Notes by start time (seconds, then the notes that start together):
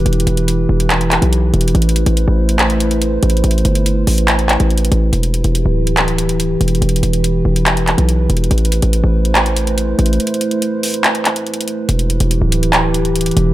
Already playing: E3 E4 G4 B4
0.06 E1, closed hi-hat
0.13 closed hi-hat
0.20 closed hi-hat
0.27 E1, closed hi-hat
0.37 closed hi-hat
0.48 closed hi-hat
0.69 E1
0.80 closed hi-hat
0.90 clap, closed hi-hat
1.01 closed hi-hat
1.11 clap, closed hi-hat
1.22 B1, closed hi-hat
1.33 closed hi-hat
1.54 E1, closed hi-hat
1.61 closed hi-hat
1.68 closed hi-hat
1.75 A1 A3 B4 C5, closed hi-hat
1.82 closed hi-hat
1.89 closed hi-hat
1.96 closed hi-hat
2.06 A1, closed hi-hat
2.17 closed hi-hat
2.28 A1
2.49 closed hi-hat
2.59 clap, closed hi-hat
2.70 closed hi-hat
2.80 closed hi-hat
2.91 closed hi-hat
3.02 closed hi-hat
3.23 A1, closed hi-hat
3.30 closed hi-hat
3.37 closed hi-hat
3.44 A1, closed hi-hat
3.51 closed hi-hat
3.58 closed hi-hat
3.65 G1, closed hi-hat
3.75 closed hi-hat
3.86 closed hi-hat
4.07 A1, open hi-hat
4.18 closed hi-hat
4.28 clap, closed hi-hat
4.39 closed hi-hat
4.49 clap, closed hi-hat
4.60 A1, closed hi-hat
4.71 closed hi-hat
4.78 closed hi-hat
4.85 closed hi-hat
4.92 A1, closed hi-hat
5.13 E1 E3 G4, closed hi-hat
5.23 closed hi-hat
5.34 closed hi-hat
5.44 E1, closed hi-hat
5.55 closed hi-hat
5.66 D1
5.87 closed hi-hat
5.97 clap, closed hi-hat
6.08 closed hi-hat
6.18 closed hi-hat
6.29 closed hi-hat
6.40 closed hi-hat
6.61 E1, closed hi-hat
6.68 closed hi-hat
6.75 closed hi-hat
6.82 E1, closed hi-hat
6.89 closed hi-hat
6.96 closed hi-hat
7.03 E1, closed hi-hat
7.13 closed hi-hat
7.24 closed hi-hat
7.45 E1
7.56 closed hi-hat
7.66 clap, closed hi-hat
7.77 closed hi-hat
7.88 clap, closed hi-hat
7.98 B1, closed hi-hat
8.09 closed hi-hat
8.30 E1, closed hi-hat
8.37 closed hi-hat
8.44 closed hi-hat
8.51 A1 A3 E4 C5, closed hi-hat
8.58 closed hi-hat
8.65 closed hi-hat
8.72 closed hi-hat
8.82 A1, closed hi-hat
8.93 closed hi-hat
9.04 A1
9.25 closed hi-hat
9.35 clap, closed hi-hat
9.46 closed hi-hat
9.56 closed hi-hat
9.67 closed hi-hat
9.78 closed hi-hat
9.99 A1, closed hi-hat
10.06 closed hi-hat
10.13 closed hi-hat
10.20 closed hi-hat
10.27 closed hi-hat
10.34 closed hi-hat
10.41 closed hi-hat
10.51 closed hi-hat
10.62 closed hi-hat
10.83 open hi-hat
10.94 closed hi-hat
11.04 clap, closed hi-hat
11.15 closed hi-hat
11.25 clap, closed hi-hat
11.36 closed hi-hat
11.47 closed hi-hat
11.54 closed hi-hat
11.61 closed hi-hat
11.68 closed hi-hat
11.89 E1 E3 E4 G4 B4, closed hi-hat
11.99 closed hi-hat
12.10 closed hi-hat
12.20 E1, closed hi-hat
12.31 closed hi-hat
12.41 D1
12.52 closed hi-hat
12.63 closed hi-hat
12.73 clap, closed hi-hat
12.94 closed hi-hat
13.05 closed hi-hat
13.16 closed hi-hat
13.21 closed hi-hat
13.26 closed hi-hat
13.31 closed hi-hat
13.37 E1, closed hi-hat